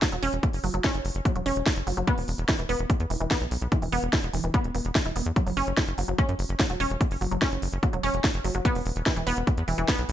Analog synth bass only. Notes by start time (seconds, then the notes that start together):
0.12 E1
0.23 E1
0.33 E1
0.53 F#1
0.64 F#1
0.74 F#1
0.94 F#1
1.05 F#1
1.15 F#1
1.35 E1
1.46 E1
1.56 E1
1.77 F#1
1.87 F#1
1.97 F#1
2.18 E1
2.28 E1
2.38 E1
2.59 E1
2.69 E1
2.79 E1
3.00 E2
3.10 E1
3.20 E1
3.41 B1
3.51 B1
3.62 B1
3.82 E1
3.92 E1
4.03 E1
4.23 E1
4.33 E1
4.44 E1
4.64 E1
4.75 E1
4.85 E1
5.05 E1
5.16 E1
5.26 E2
5.47 F#1
5.57 F#1
5.67 F#1
5.88 F#1
5.98 F#1
6.08 F#1
6.29 F#2
6.39 F#1
6.49 F#1
6.70 E1
6.80 E1
6.90 E1
7.11 F#1
7.21 F#1
7.31 F#1
7.52 F#1
7.62 F#1
7.73 F#1
7.93 E1
8.03 E1
8.14 E1
8.34 F#1
8.44 F#1
8.55 F#1
8.75 E1
8.86 E1
8.96 E1
9.16 E1
9.27 E1
9.37 E1
9.57 E2
9.68 E1
9.78 E1
9.99 B1
10.09 B1